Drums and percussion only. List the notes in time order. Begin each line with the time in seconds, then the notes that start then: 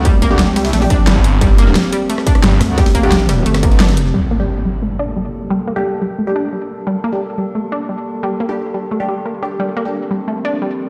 0.05 kick, closed hi-hat, ride
0.22 kick, closed hi-hat, ride
0.39 snare, closed hi-hat, ride
0.56 cross-stick, snare, closed hi-hat, open hi-hat
0.65 snare, open hi-hat
0.73 snare, closed hi-hat, open hi-hat
0.82 open hi-hat
0.90 kick, closed hi-hat, ride
1.07 snare, closed hi-hat, ride
1.16 kick
1.24 closed hi-hat, ride
1.41 kick, closed hi-hat, ride
1.58 closed hi-hat, ride
1.67 snare
1.75 snare, closed hi-hat, open hi-hat
1.93 closed hi-hat, ride
2.10 closed hi-hat, ride
2.18 cross-stick, snare
2.27 kick, closed hi-hat, ride
2.35 cross-stick, ride
2.44 snare, closed hi-hat, ride
2.61 cross-stick, snare, closed hi-hat, open hi-hat
2.78 kick, snare, closed hi-hat, open hi-hat
2.86 snare, open hi-hat
2.95 kick, closed hi-hat
3.03 ride
3.12 snare, closed hi-hat, open hi-hat
3.29 cross-stick, snare, closed hi-hat, ride
3.46 closed hi-hat, ride
3.54 cross-stick, snare, ride
3.63 kick, closed hi-hat
3.72 ride
3.80 snare, closed hi-hat, open hi-hat
3.89 snare, open hi-hat
3.97 closed hi-hat, ride
4.06 snare